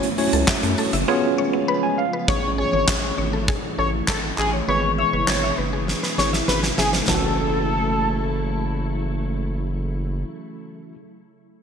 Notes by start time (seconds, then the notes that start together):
Already playing: F#3 F#4
0.03 closed hi-hat, shaker
0.18 A3 C#4 E4 F#4 C#5, open hi-hat, shaker
0.33 C#2 A4, closed hi-hat, shaker
0.47 F#2 E5, kick, snare, clap, shaker
0.63 F#2 A3, closed hi-hat, shaker
0.78 A4, open hi-hat, shaker
0.93 F#1 E5, closed hi-hat, shaker
1.08 B3 C#4 F4 G#4 C#5
1.38 C#5
1.53 B3
1.68 B4 B5
1.83 G#5
1.98 F5
2.13 B4
2.28 A1 C#3 E3 A3 C#4 E4 G#4 C#5, kick
2.58 G#4 C#5
2.73 G#1 C#5
2.88 A1, kick, snare, clap
3.03 G#4
3.18 G#1 C#5
3.33 A4
3.48 G#4, kick
3.78 A1 A4 C#5
4.08 G#1 A4, kick, snare, clap
4.23 A4
4.38 A1 G#4, clap
4.53 C#5
4.68 G#1 B2 E3 G#3 B3 E4 G#4 B4 C#5
4.98 C#5 E5
5.13 F#1 B4
5.28 G#1, snare, clap
5.43 E5
5.58 F#1 B4
5.73 G#4
5.88 snare
6.03 B4, snare
6.18 G#1 G#4 C#5, snare
6.33 E5, snare
6.48 G#1 B4, snare
6.63 G#4, snare
6.78 G1 G#4 E5, snare
6.93 B4, snare
7.02 A3
7.06 F#1 C#3 E3 F#3 A3 C#4 E4 A4, snare, floor tom
7.10 F#4